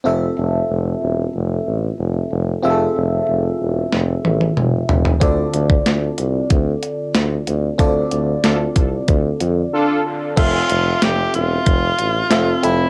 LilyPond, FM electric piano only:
<<
  \new Staff \with { instrumentName = "FM electric piano" } { \time 4/4 \key f \major \tempo 4 = 93 <c' f' a' e''>1 | <c' f' aes' a' e''>1 | <c' f' a' d''>1 | <c' f' a' d''>1 |
<c' f' a' e''>4. r4. <c' f' a' e''>8 <c' f' a' e''>8 | }
  \new Staff \with { instrumentName = "FM electric piano" } { \clef bass \time 4/4 \key f \major r1 | r1 | d4. r2 r8 | d4. r2 r8 |
r1 | }
>>